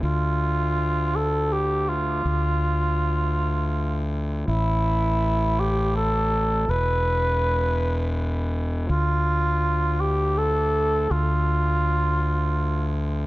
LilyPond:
<<
  \new Staff \with { instrumentName = "Cor anglais" } { \time 3/4 \key d \dorian \tempo 4 = 81 f'4. a'8 g'8 f'8~ | f'2~ f'8 r8 | e'4. g'8 a'4 | b'2 r4 |
f'4. g'8 a'4 | f'2~ f'8 r8 | }
  \new Staff \with { instrumentName = "Fingered electric bass" } { \clef bass \time 3/4 \key d \dorian d,2. | d,2. | a,,2. | e,,2. |
d,2. | d,2. | }
>>